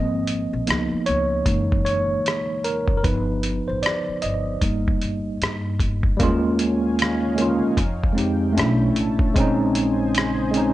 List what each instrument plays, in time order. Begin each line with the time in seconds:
Already playing: upright bass G#1, tine electric piano F3 A#3 C4 D#5
0.27 closed hi-hat
0.53 upright bass A#1
0.67 upright bass C#2, tine electric piano F3 A#3 B3 D#4, cross-stick, closed hi-hat
0.93 muted upright bass stroke
1.06 upright bass C#2, tine electric piano C#5, closed hi-hat
1.45 upright bass F#1, tine electric piano E3 G#3 A#3 D#4, kick, closed hi-hat
1.72 kick
1.85 tine electric piano C#5, closed hi-hat
2.26 cross-stick, closed hi-hat
2.64 tine electric piano A#4, closed hi-hat
2.88 upright bass F#1, kick
2.97 tine electric piano A#4
3.04 upright bass G1, tine electric piano F3 B3 D#4 B4, kick, closed hi-hat
3.43 closed hi-hat
3.68 upright bass A1, tine electric piano C5
3.83 tine electric piano D5, cross-stick, closed hi-hat
4.09 muted upright bass stroke
4.22 upright bass G1, tine electric piano D#5, closed hi-hat
4.61 upright bass G1, tine electric piano G3 A#3 D#4, kick, closed hi-hat
4.88 kick
5.02 upright bass G1, closed hi-hat
5.42 upright bass G2, cross-stick, closed hi-hat
5.80 upright bass G1, kick, closed hi-hat
6.03 kick
6.17 upright bass D#2, tine electric piano G3 A#3, analog synth pad D#4 C#5 F5 G#5, kick, closed hi-hat
6.21 tine electric piano G#3 C#4 F4
6.59 closed hi-hat
6.99 cross-stick, closed hi-hat
7.36 tine electric piano G#3 A#3, closed hi-hat
7.40 tine electric piano C#4 F4
7.77 upright bass F2, analog synth pad G#3 G5, kick, closed hi-hat
8.04 kick
8.13 tine electric piano G#3 C4
8.17 tine electric piano D#4 G4, closed hi-hat
8.53 tine electric piano A3 C#4
8.57 upright bass B1, analog synth pad D3 C#5 E5 A5, tine electric piano D4 E4, cross-stick, closed hi-hat
8.96 upright bass A1, closed hi-hat
9.19 kick
9.34 upright bass A#1, analog synth pad C#3 C5 D#5 G#5, tine electric piano G#3 C4, kick, closed hi-hat
9.38 tine electric piano C#4 D#4
9.75 closed hi-hat
10.15 cross-stick, closed hi-hat
10.51 tine electric piano G#3 C4, closed hi-hat
10.55 tine electric piano C#4 D#4